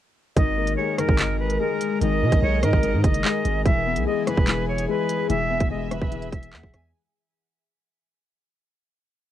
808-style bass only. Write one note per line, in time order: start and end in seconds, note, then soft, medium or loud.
0.37 0.76 G#1 loud
1.09 1.58 G#1 loud
2.01 2.23 G#1 loud
2.22 2.31 B2 loud
2.32 2.42 G#1 loud
2.42 2.64 B1 loud
2.63 2.72 G#2 loud
2.73 2.95 G#1 loud
2.94 3.03 G#2 loud
3.04 3.24 F#1 loud
3.45 3.65 G#1 loud
3.66 3.98 E1 loud
3.96 4.06 B1 loud
4.37 4.87 E1 loud
5.30 5.60 E1 loud
5.61 5.71 E1 loud
5.71 6.01 E1 loud
6.02 6.31 E1 loud
6.33 6.55 E1 loud
6.53 6.63 E2 loud
6.64 6.73 E1 loud
6.74 6.93 E2 loud